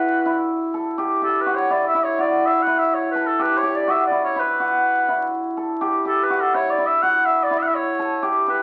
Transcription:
0.00 0.25 E4 medium
0.00 1.04 F#4 soft
0.00 0.73 A4 soft
0.00 0.51 B4 medium
0.26 1.70 E4 medium
0.74 3.15 A4 medium
0.98 1.21 G4 medium
1.22 1.52 G4 soft
1.22 1.42 A4 medium
1.41 1.57 B4 medium
1.46 2.18 F#4 medium
1.56 1.72 C#5 medium
1.70 1.94 E4 medium
1.70 1.87 D5 medium
1.87 2.05 E5 medium
1.94 2.66 E4 medium
2.04 2.22 C#5 medium
2.18 3.45 F#4 medium
2.18 2.47 D5 medium
2.46 2.64 E5 medium
2.62 2.80 F#5 medium
2.67 4.11 E4 medium
2.78 2.95 E5 medium
2.94 3.09 C#5 medium
3.11 3.28 B4 medium
3.15 5.57 A4 soft
3.26 3.43 A4 medium
3.39 3.62 G4 medium
3.39 3.59 B4 medium
3.58 3.76 C#5 medium
3.63 3.94 G4 medium
3.75 3.92 D5 medium
3.88 4.59 F#4 medium
3.88 4.05 E5 medium
4.06 4.20 D5 medium
4.11 4.35 E4 medium
4.24 4.41 C#5 medium
4.36 5.08 E4 medium
4.36 5.35 B4 medium
4.60 5.87 F#4 medium
5.08 6.54 E4 medium
5.57 7.99 A4 soft
5.81 6.05 G4 medium
6.05 6.36 G4 medium
6.05 6.25 A4 medium
6.23 6.42 B4 medium
6.30 7.02 F#4 medium
6.41 6.57 A4 medium
6.54 6.78 E4 medium
6.54 6.72 C#5 medium
6.70 6.88 D5 medium
6.78 7.50 E4 medium
6.86 7.04 E5 medium
7.02 8.29 F#4 medium
7.02 7.27 F#5 medium
7.25 7.44 E5 medium
7.43 7.59 D5 medium
7.51 8.63 E4 medium
7.58 7.64 E5 medium
7.62 7.68 F#5 medium
7.67 7.76 E5 medium
7.75 8.23 C#5 medium
7.99 8.63 A4 medium
8.23 8.47 G4 medium
8.47 8.63 G4 medium
8.47 8.63 B4 medium

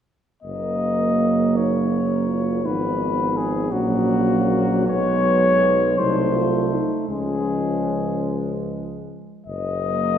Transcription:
0.43 2.66 F#1 soft
0.43 2.60 F#3 soft
0.43 1.57 A#3 soft
0.43 2.60 A#3 soft
0.43 1.58 D#5 medium
1.56 1.94 D#4 soft
1.56 2.67 C#5 soft
1.93 2.30 C#4 soft
2.28 2.66 F4 soft
2.64 3.72 G#1 soft
2.64 3.72 F3 soft
2.64 3.70 B3 soft
2.64 3.72 D#4 soft
2.64 3.38 B4 medium
3.37 3.73 G#4 soft
3.70 4.89 A#1 soft
3.70 6.81 F#3 soft
3.70 4.87 A#3 soft
3.70 4.86 C#4 soft
3.70 4.87 F#4 medium
4.86 5.97 B1 soft
4.86 5.96 G#3 soft
4.86 6.00 B3 medium
4.86 6.00 C#5 medium
5.98 6.79 C2 soft
5.98 7.07 A3 soft
5.98 6.35 D#4 soft
5.98 6.81 C5 medium
6.34 6.72 F4 soft
6.71 7.09 D#4 soft
7.09 9.08 C#2 soft
7.09 9.08 F3 soft
7.09 9.12 G#3 soft
7.09 8.83 C#4 soft
7.09 8.23 G#4 soft
9.46 10.18 F#1 soft
9.46 10.18 D#5 medium
9.84 10.18 F#3 soft
9.84 10.18 A#3 soft

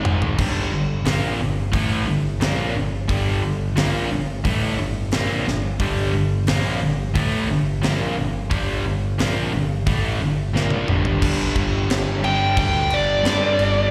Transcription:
0.00 0.36 G#2 medium
0.00 0.37 D#3 medium
0.00 0.38 G#3 medium
0.05 0.35 G#1 medium
0.05 mid tom loud
0.22 floor tom medium
0.37 0.70 G1 loud
0.37 0.71 G2 medium
0.37 0.71 D3 loud
0.37 0.72 G3 loud
0.37 kick medium
0.37 crash loud
0.72 1.04 G1 medium
0.72 1.00 G2 medium
0.72 1.00 D3 medium
1.05 1.38 A#1 loud
1.05 1.38 A#2 medium
1.05 1.39 F3 medium
1.05 1.39 A#3 loud
1.05 snare medium
1.05 open hi-hat medium
1.40 1.71 G1 medium
1.40 1.67 G2 medium
1.40 1.67 D3 medium
1.72 2.05 A1 medium
1.72 2.06 A2 loud
1.72 2.06 E3 medium
1.72 2.07 A3 loud
1.72 kick loud
1.72 open hi-hat medium
2.06 2.39 G1 medium
2.06 2.34 G2 medium
2.06 2.34 D3 medium
2.40 2.73 A#1 medium
2.40 2.74 A#2 medium
2.40 2.74 F3 medium
2.40 2.74 A#3 loud
2.40 snare loud
2.40 open hi-hat soft
2.74 3.07 G1 medium
2.74 3.02 G2 medium
2.74 3.02 D3 medium
3.08 3.41 G1 medium
3.08 3.41 G2 medium
3.08 3.41 D3 loud
3.08 3.42 G3 loud
3.08 kick medium
3.08 open hi-hat medium
3.42 3.75 G1 medium
3.42 3.70 G2 medium
3.42 3.70 D3 medium
3.76 4.09 A#1 loud
3.76 4.09 A#2 medium
3.76 4.10 F3 medium
3.76 4.10 A#3 loud
3.76 snare loud
3.76 open hi-hat medium
4.10 4.42 G1 medium
4.10 4.38 G2 medium
4.10 4.38 D3 medium
4.44 4.76 A1 medium
4.44 4.77 A2 medium
4.44 4.78 E3 loud
4.44 4.78 A3 loud
4.44 kick loud
4.44 open hi-hat medium
4.78 5.10 G1 medium
4.78 5.05 G2 medium
4.78 5.06 D3 medium
5.12 5.44 A#1 medium
5.12 5.45 A#2 medium
5.12 5.45 F3 medium
5.12 5.46 A#3 loud
5.12 snare loud
5.12 open hi-hat medium
5.46 5.78 G1 medium
5.46 5.73 G2 medium
5.46 5.73 D3 medium
5.46 snare soft
5.80 6.11 G1 loud
5.80 6.12 G2 loud
5.80 6.12 D3 loud
5.80 6.13 G3 loud
5.80 kick loud
5.80 open hi-hat medium
6.13 6.46 G1 medium
6.13 6.41 G2 medium
6.13 6.41 D3 medium
6.47 6.80 A#1 medium
6.47 6.80 A#2 medium
6.47 6.81 F3 loud
6.47 6.81 A#3 loud
6.47 snare loud
6.47 open hi-hat medium
6.82 7.13 G1 medium
6.82 7.09 G2 medium
6.82 7.09 D3 medium
7.15 7.47 A1 medium
7.15 7.48 A2 loud
7.15 7.48 E3 medium
7.15 7.49 A3 medium
7.15 kick loud
7.15 open hi-hat medium
7.49 7.81 G1 medium
7.49 7.76 G2 medium
7.49 7.77 D3 medium
7.82 8.15 A#1 medium
7.82 8.15 A#2 loud
7.82 8.16 F3 medium
7.82 8.16 A#3 loud
7.82 snare loud
7.82 open hi-hat medium
8.17 8.49 G1 medium
8.17 8.44 G2 medium
8.17 8.44 D3 medium
8.50 8.83 G1 loud
8.50 8.83 G2 medium
8.50 8.84 D3 medium
8.50 8.84 G3 loud
8.50 kick loud
8.50 open hi-hat medium
8.85 9.17 G1 medium
8.85 9.12 G2 medium
8.85 9.12 D3 medium
9.19 9.51 A#1 medium
9.19 9.52 A#2 medium
9.19 9.52 F3 medium
9.19 9.52 A#3 loud
9.19 snare loud
9.19 open hi-hat medium
9.52 9.84 G1 medium
9.52 9.79 G2 medium
9.52 9.80 D3 medium
9.86 10.18 A1 medium
9.86 10.19 A2 loud
9.86 10.20 E3 loud
9.86 10.20 A3 loud
9.86 kick loud
9.86 open hi-hat medium
10.20 10.52 G1 medium
10.20 10.48 G2 medium
10.20 10.48 D3 medium
10.53 10.86 A#1 medium
10.53 10.87 A#2 medium
10.53 10.87 F3 medium
10.53 10.88 A#3 loud
10.53 snare medium
10.70 high tom medium
10.87 11.20 G1 loud
10.87 11.18 G2 medium
10.87 11.21 D3 medium
10.87 11.21 G3 loud
10.87 mid tom medium
11.05 floor tom medium
11.19 11.52 G1 loud
11.19 12.25 G2 medium
11.19 12.22 D3 loud
11.19 kick loud
11.19 crash loud
11.19 crash medium
11.23 12.22 G3 medium
11.56 11.86 G1 loud
11.56 kick medium
11.56 crash medium
11.89 12.19 G1 loud
11.89 snare loud
11.89 crash medium
12.22 12.53 G1 medium
12.22 13.22 G2 medium
12.22 13.23 D3 medium
12.22 13.26 G3 medium
12.22 12.58 G5 loud
12.22 crash medium
12.57 12.87 D2 medium
12.57 12.93 G5 loud
12.57 kick loud
12.57 crash medium
12.90 13.21 G1 medium
12.90 13.90 D5 loud
12.90 crash medium
13.23 13.90 G2 medium
13.23 13.55 G2 medium
13.23 13.91 D3 medium
13.23 13.91 G3 medium
13.23 snare loud
13.23 crash medium
13.59 13.89 G1 medium
13.59 crash medium

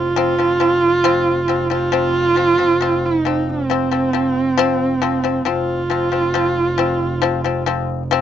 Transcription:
0.00 5.47 F1 medium
0.00 1.72 F4 loud
0.16 0.34 F3 medium
0.16 0.35 C4 medium
0.39 0.56 F3 medium
0.39 0.57 C4 medium
0.60 0.96 F3 medium
0.60 0.96 C4 medium
1.04 1.40 F3 loud
1.04 1.40 C4 loud
1.48 1.66 F3 medium
1.48 1.67 C4 medium
1.70 1.88 F3 medium
1.70 1.89 C4 medium
1.70 3.07 F4 loud
1.92 2.28 F3 medium
1.92 2.28 C4 medium
2.36 2.54 F3 medium
2.36 2.55 C4 medium
2.58 2.76 F3 medium
2.58 2.77 C4 medium
2.81 3.16 F3 medium
2.81 3.17 C4 medium
3.05 3.52 D#4 medium
3.25 3.61 F3 medium
3.25 3.61 C4 medium
3.50 5.49 C4 medium
3.70 3.87 F3 medium
3.70 3.88 C4 medium
3.91 4.09 F3 medium
3.91 4.10 C4 medium
4.13 4.49 F3 medium
4.13 4.49 C4 medium
4.58 4.93 F3 loud
4.58 4.94 C4 loud
5.02 5.20 F3 medium
5.02 5.20 C4 medium
5.24 5.42 F3 medium
5.24 5.42 C4 medium
5.45 8.21 F1 medium
5.45 5.81 F3 medium
5.45 5.82 C4 medium
5.45 7.83 F4 medium
5.90 6.08 F3 medium
5.90 6.08 C4 medium
6.12 6.30 F3 medium
6.12 6.30 C4 medium
6.34 6.70 F3 medium
6.34 6.70 C4 medium
6.78 7.14 F3 medium
6.78 7.14 C4 medium
7.22 7.40 F3 loud
7.22 7.41 C4 medium
7.44 7.62 F3 medium
7.44 7.63 C4 medium
7.66 8.02 F3 medium
7.66 8.03 C4 medium
8.11 8.21 F3 loud
8.11 8.21 C4 loud

